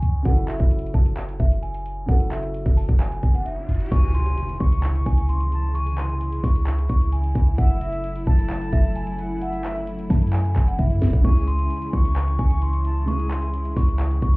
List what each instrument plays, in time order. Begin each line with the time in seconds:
Already playing: felt piano C#3 G#3 E4 G#4, celesta G#5
0.02 808-style bass C#2, closed hi-hat
0.23 808-style bass F#1, felt piano C#3 F#3 E4, celesta F#5, kick, closed hi-hat
0.28 felt piano A4
0.37 closed hi-hat
0.48 celesta E5, clap, closed hi-hat
0.60 808-style bass F#1, kick, closed hi-hat
0.71 closed hi-hat
0.79 closed hi-hat
0.86 closed hi-hat
0.94 808-style bass F#1, celesta A5, kick
1.06 closed hi-hat
1.17 clap, closed hi-hat
1.29 closed hi-hat
1.40 808-style bass F#1, celesta E5, kick, closed hi-hat
1.51 closed hi-hat
1.62 celesta G#5, closed hi-hat
1.74 closed hi-hat
1.86 closed hi-hat
2.06 808-style bass F#1, felt piano C#3 F#3 E4, celesta F#5, kick, closed hi-hat, riser
2.12 felt piano A4
2.20 closed hi-hat
2.31 celesta E5, clap, closed hi-hat
2.43 closed hi-hat
2.54 closed hi-hat
2.66 808-style bass F#1, kick, closed hi-hat
2.77 celesta A5, open hi-hat
2.89 808-style bass F#1, kick, closed hi-hat
3.00 celesta G#5, clap, closed hi-hat
3.12 closed hi-hat
3.23 808-style bass F#1, kick, closed hi-hat
3.35 celesta F#5, closed hi-hat
3.46 celesta E5, closed hi-hat
3.69 808-style bass F#1, closed hi-hat
3.75 closed hi-hat
3.80 closed hi-hat
3.86 closed hi-hat
3.92 808-style bass C#2, string section C#3 E3 G#3 E4, flute G#5, celesta C#6, kick, closed hi-hat, crash, impact
4.03 closed hi-hat
4.14 celesta C6, closed hi-hat
4.26 closed hi-hat
4.38 closed hi-hat
4.49 closed hi-hat
4.60 808-style bass C#2, celesta C#6, flute C#6, kick
4.72 closed hi-hat
4.83 clap, closed hi-hat
4.95 closed hi-hat
5.06 808-style bass C#2, celesta G#5, kick, closed hi-hat
5.18 closed hi-hat
5.29 celesta C6, closed hi-hat
5.41 closed hi-hat
5.52 flute A5, closed hi-hat
5.75 flute G#5, celesta C#6, closed hi-hat
5.87 closed hi-hat
5.98 celesta C6, clap, closed hi-hat
6.09 closed hi-hat
6.21 closed hi-hat
6.32 closed hi-hat
6.44 808-style bass C#2, celesta C#6, kick, open hi-hat
6.56 closed hi-hat
6.67 clap, closed hi-hat
6.78 closed hi-hat
6.89 808-style bass C#2, celesta C#6, kick, closed hi-hat
7.01 closed hi-hat
7.12 celesta G#5, closed hi-hat
7.24 closed hi-hat
7.35 808-style bass C#2, kick, closed hi-hat
7.58 808-style bass F#1, string section C#3 F#3 A3, flute E5, celesta F#5, kick, closed hi-hat
7.70 closed hi-hat
7.81 celesta E5, closed hi-hat
7.92 closed hi-hat
8.04 closed hi-hat
8.16 closed hi-hat
8.27 808-style bass F#1, celesta A5, flute A5, kick
8.39 closed hi-hat
8.50 clap, closed hi-hat
8.62 closed hi-hat
8.73 808-style bass F#1, celesta E5, kick, closed hi-hat
8.84 closed hi-hat
8.96 celesta G#5, closed hi-hat
9.07 closed hi-hat
9.19 flute F#5, closed hi-hat
9.42 flute E5, celesta F#5, closed hi-hat
9.53 closed hi-hat
9.64 celesta E5, clap, closed hi-hat
9.76 closed hi-hat
9.87 closed hi-hat
9.99 closed hi-hat
10.10 808-style bass F#2, celesta A5, kick, open hi-hat
10.22 closed hi-hat
10.27 closed hi-hat
10.33 celesta G#5, clap, closed hi-hat
10.39 closed hi-hat
10.45 closed hi-hat
10.56 808-style bass F#1, kick, clap, closed hi-hat
10.68 celesta F#5, closed hi-hat
10.79 808-style bass F#2, celesta E5, kick, closed hi-hat
10.90 closed hi-hat
11.02 808-style bass F#1, snare, closed hi-hat
11.13 808-style bass F#1, kick
11.22 808-style bass C#2, felt piano C#3 G#3 E4, string section E3 G#3, flute G#5, celesta C#6, kick, crash
11.27 felt piano G#4
11.36 closed hi-hat
11.48 celesta C6, closed hi-hat
11.59 closed hi-hat
11.70 closed hi-hat
11.82 closed hi-hat
11.93 808-style bass C#2, celesta C#6, flute C#6, kick
12.05 closed hi-hat
12.16 clap, closed hi-hat
12.28 closed hi-hat
12.39 808-style bass C#2, celesta G#5, kick, closed hi-hat
12.51 closed hi-hat
12.62 celesta C6, closed hi-hat
12.73 closed hi-hat
12.85 flute A5, closed hi-hat
13.05 felt piano C#3 G#3 E4, flute G#5, celesta C#6, closed hi-hat
13.11 felt piano G#4
13.19 closed hi-hat
13.30 celesta C6, clap, closed hi-hat
13.42 closed hi-hat
13.54 closed hi-hat
13.65 closed hi-hat
13.77 808-style bass C#2, celesta C#6, kick, open hi-hat
13.89 closed hi-hat
13.99 clap, closed hi-hat
14.11 closed hi-hat
14.22 808-style bass C#2, celesta C#6, kick, closed hi-hat
14.34 closed hi-hat